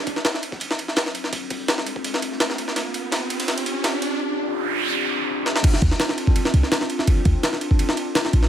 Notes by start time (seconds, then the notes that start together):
Already playing: C4 D4 F4 A4, riser
0.07 kick, closed hi-hat, ride
0.16 snare
0.25 snare, closed hi-hat, ride
0.34 snare
0.43 closed hi-hat, ride
0.52 kick, snare
0.60 closed hi-hat, ride
0.70 snare, closed hi-hat
0.78 closed hi-hat, ride
0.88 snare
0.96 snare, closed hi-hat, ride
1.06 snare
1.15 closed hi-hat, ride
1.24 snare
1.33 kick, closed hi-hat, ride
1.50 kick, open hi-hat, ride
1.68 snare, closed hi-hat, ride
1.78 snare
1.86 closed hi-hat, ride
1.96 kick
2.04 closed hi-hat, ride
2.14 snare
2.22 closed hi-hat, ride
2.32 snare
2.40 snare, closed hi-hat, ride
2.50 snare
2.58 closed hi-hat, ride
2.68 snare
2.76 G4, snare, closed hi-hat, ride
2.94 closed hi-hat, ride
3.12 snare, closed hi-hat, ride
3.30 closed hi-hat, ride
3.40 snare, ride
3.48 snare, closed hi-hat, ride
3.58 closed hi-hat, ride
3.66 closed hi-hat, ride
3.84 snare, closed hi-hat, ride
4.02 closed hi-hat, ride
4.20 noise sweep
5.46 snare
5.56 snare
5.64 C4 D4 F4 A4, kick, crash, ride
5.74 snare
5.82 D2, kick, ride
5.91 snare
6.00 snare, ride
6.09 snare
6.18 ride
6.27 kick
6.36 ride
6.45 snare
6.54 C2, ride
6.63 snare
6.72 snare, ride
6.81 snare
6.90 ride
6.99 snare
7.07 kick, ride
7.25 D2, kick, ride
7.43 snare, ride
7.53 snare
7.61 ride
7.71 kick
7.79 ride
7.89 snare
7.97 ride
8.15 snare, ride
8.25 snare
8.33 A1, ride
8.43 snare